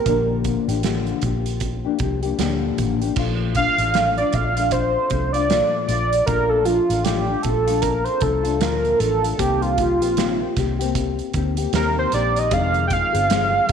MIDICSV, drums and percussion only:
0, 0, Header, 1, 2, 480
1, 0, Start_track
1, 0, Key_signature, -2, "major"
1, 0, Tempo, 779221
1, 34, Time_signature, 4, 2, 24, 8
1, 8452, End_track
2, 0, Start_track
2, 0, Title_t, "Drums"
2, 36, Note_on_c, 9, 42, 80
2, 37, Note_on_c, 9, 36, 93
2, 97, Note_off_c, 9, 42, 0
2, 98, Note_off_c, 9, 36, 0
2, 273, Note_on_c, 9, 42, 55
2, 277, Note_on_c, 9, 36, 60
2, 335, Note_off_c, 9, 42, 0
2, 338, Note_off_c, 9, 36, 0
2, 423, Note_on_c, 9, 42, 52
2, 485, Note_off_c, 9, 42, 0
2, 512, Note_on_c, 9, 42, 75
2, 520, Note_on_c, 9, 38, 102
2, 574, Note_off_c, 9, 42, 0
2, 581, Note_off_c, 9, 38, 0
2, 657, Note_on_c, 9, 42, 31
2, 718, Note_off_c, 9, 42, 0
2, 749, Note_on_c, 9, 42, 72
2, 756, Note_on_c, 9, 36, 75
2, 810, Note_off_c, 9, 42, 0
2, 818, Note_off_c, 9, 36, 0
2, 898, Note_on_c, 9, 42, 55
2, 960, Note_off_c, 9, 42, 0
2, 987, Note_on_c, 9, 42, 68
2, 993, Note_on_c, 9, 36, 70
2, 1048, Note_off_c, 9, 42, 0
2, 1054, Note_off_c, 9, 36, 0
2, 1224, Note_on_c, 9, 42, 52
2, 1232, Note_on_c, 9, 36, 83
2, 1285, Note_off_c, 9, 42, 0
2, 1293, Note_off_c, 9, 36, 0
2, 1372, Note_on_c, 9, 42, 42
2, 1434, Note_off_c, 9, 42, 0
2, 1471, Note_on_c, 9, 42, 91
2, 1476, Note_on_c, 9, 38, 92
2, 1532, Note_off_c, 9, 42, 0
2, 1537, Note_off_c, 9, 38, 0
2, 1714, Note_on_c, 9, 42, 70
2, 1716, Note_on_c, 9, 36, 70
2, 1775, Note_off_c, 9, 42, 0
2, 1777, Note_off_c, 9, 36, 0
2, 1858, Note_on_c, 9, 42, 40
2, 1920, Note_off_c, 9, 42, 0
2, 1946, Note_on_c, 9, 49, 83
2, 1950, Note_on_c, 9, 36, 102
2, 2007, Note_off_c, 9, 49, 0
2, 2012, Note_off_c, 9, 36, 0
2, 2185, Note_on_c, 9, 42, 53
2, 2190, Note_on_c, 9, 36, 71
2, 2247, Note_off_c, 9, 42, 0
2, 2252, Note_off_c, 9, 36, 0
2, 2331, Note_on_c, 9, 42, 53
2, 2393, Note_off_c, 9, 42, 0
2, 2426, Note_on_c, 9, 42, 73
2, 2434, Note_on_c, 9, 38, 101
2, 2488, Note_off_c, 9, 42, 0
2, 2495, Note_off_c, 9, 38, 0
2, 2573, Note_on_c, 9, 42, 32
2, 2635, Note_off_c, 9, 42, 0
2, 2665, Note_on_c, 9, 42, 73
2, 2671, Note_on_c, 9, 36, 80
2, 2726, Note_off_c, 9, 42, 0
2, 2732, Note_off_c, 9, 36, 0
2, 2814, Note_on_c, 9, 42, 66
2, 2875, Note_off_c, 9, 42, 0
2, 2902, Note_on_c, 9, 42, 76
2, 2906, Note_on_c, 9, 36, 81
2, 2963, Note_off_c, 9, 42, 0
2, 2967, Note_off_c, 9, 36, 0
2, 3141, Note_on_c, 9, 42, 52
2, 3146, Note_on_c, 9, 36, 74
2, 3203, Note_off_c, 9, 42, 0
2, 3208, Note_off_c, 9, 36, 0
2, 3290, Note_on_c, 9, 42, 49
2, 3352, Note_off_c, 9, 42, 0
2, 3387, Note_on_c, 9, 42, 81
2, 3392, Note_on_c, 9, 38, 104
2, 3449, Note_off_c, 9, 42, 0
2, 3454, Note_off_c, 9, 38, 0
2, 3626, Note_on_c, 9, 42, 67
2, 3688, Note_off_c, 9, 42, 0
2, 3773, Note_on_c, 9, 42, 50
2, 3835, Note_off_c, 9, 42, 0
2, 3864, Note_on_c, 9, 42, 75
2, 3866, Note_on_c, 9, 36, 94
2, 3925, Note_off_c, 9, 42, 0
2, 3928, Note_off_c, 9, 36, 0
2, 4099, Note_on_c, 9, 42, 63
2, 4160, Note_off_c, 9, 42, 0
2, 4251, Note_on_c, 9, 42, 57
2, 4312, Note_off_c, 9, 42, 0
2, 4341, Note_on_c, 9, 42, 81
2, 4348, Note_on_c, 9, 38, 103
2, 4402, Note_off_c, 9, 42, 0
2, 4409, Note_off_c, 9, 38, 0
2, 4579, Note_on_c, 9, 42, 65
2, 4586, Note_on_c, 9, 36, 82
2, 4640, Note_off_c, 9, 42, 0
2, 4648, Note_off_c, 9, 36, 0
2, 4729, Note_on_c, 9, 42, 64
2, 4790, Note_off_c, 9, 42, 0
2, 4817, Note_on_c, 9, 42, 76
2, 4822, Note_on_c, 9, 36, 82
2, 4879, Note_off_c, 9, 42, 0
2, 4883, Note_off_c, 9, 36, 0
2, 4962, Note_on_c, 9, 42, 29
2, 5024, Note_off_c, 9, 42, 0
2, 5055, Note_on_c, 9, 42, 58
2, 5062, Note_on_c, 9, 36, 81
2, 5116, Note_off_c, 9, 42, 0
2, 5123, Note_off_c, 9, 36, 0
2, 5204, Note_on_c, 9, 42, 44
2, 5265, Note_off_c, 9, 42, 0
2, 5302, Note_on_c, 9, 42, 84
2, 5307, Note_on_c, 9, 38, 113
2, 5363, Note_off_c, 9, 42, 0
2, 5369, Note_off_c, 9, 38, 0
2, 5450, Note_on_c, 9, 42, 29
2, 5512, Note_off_c, 9, 42, 0
2, 5545, Note_on_c, 9, 42, 79
2, 5607, Note_off_c, 9, 42, 0
2, 5694, Note_on_c, 9, 42, 51
2, 5756, Note_off_c, 9, 42, 0
2, 5786, Note_on_c, 9, 36, 107
2, 5787, Note_on_c, 9, 42, 83
2, 5847, Note_off_c, 9, 36, 0
2, 5849, Note_off_c, 9, 42, 0
2, 5928, Note_on_c, 9, 42, 32
2, 5989, Note_off_c, 9, 42, 0
2, 6023, Note_on_c, 9, 42, 56
2, 6026, Note_on_c, 9, 36, 68
2, 6085, Note_off_c, 9, 42, 0
2, 6087, Note_off_c, 9, 36, 0
2, 6172, Note_on_c, 9, 42, 54
2, 6234, Note_off_c, 9, 42, 0
2, 6265, Note_on_c, 9, 42, 82
2, 6273, Note_on_c, 9, 38, 100
2, 6327, Note_off_c, 9, 42, 0
2, 6334, Note_off_c, 9, 38, 0
2, 6508, Note_on_c, 9, 42, 71
2, 6510, Note_on_c, 9, 36, 74
2, 6513, Note_on_c, 9, 38, 33
2, 6570, Note_off_c, 9, 42, 0
2, 6571, Note_off_c, 9, 36, 0
2, 6575, Note_off_c, 9, 38, 0
2, 6657, Note_on_c, 9, 42, 62
2, 6719, Note_off_c, 9, 42, 0
2, 6746, Note_on_c, 9, 36, 78
2, 6746, Note_on_c, 9, 42, 90
2, 6808, Note_off_c, 9, 36, 0
2, 6808, Note_off_c, 9, 42, 0
2, 6892, Note_on_c, 9, 42, 29
2, 6953, Note_off_c, 9, 42, 0
2, 6982, Note_on_c, 9, 42, 57
2, 6986, Note_on_c, 9, 36, 72
2, 7044, Note_off_c, 9, 42, 0
2, 7048, Note_off_c, 9, 36, 0
2, 7127, Note_on_c, 9, 42, 49
2, 7189, Note_off_c, 9, 42, 0
2, 7225, Note_on_c, 9, 42, 80
2, 7230, Note_on_c, 9, 38, 104
2, 7286, Note_off_c, 9, 42, 0
2, 7291, Note_off_c, 9, 38, 0
2, 7466, Note_on_c, 9, 42, 77
2, 7527, Note_off_c, 9, 42, 0
2, 7616, Note_on_c, 9, 42, 47
2, 7678, Note_off_c, 9, 42, 0
2, 7707, Note_on_c, 9, 42, 80
2, 7709, Note_on_c, 9, 36, 101
2, 7768, Note_off_c, 9, 42, 0
2, 7771, Note_off_c, 9, 36, 0
2, 7850, Note_on_c, 9, 42, 30
2, 7911, Note_off_c, 9, 42, 0
2, 7949, Note_on_c, 9, 42, 58
2, 7952, Note_on_c, 9, 36, 74
2, 8010, Note_off_c, 9, 42, 0
2, 8013, Note_off_c, 9, 36, 0
2, 8099, Note_on_c, 9, 42, 56
2, 8160, Note_off_c, 9, 42, 0
2, 8192, Note_on_c, 9, 42, 89
2, 8200, Note_on_c, 9, 38, 112
2, 8254, Note_off_c, 9, 42, 0
2, 8261, Note_off_c, 9, 38, 0
2, 8432, Note_on_c, 9, 42, 70
2, 8452, Note_off_c, 9, 42, 0
2, 8452, End_track
0, 0, End_of_file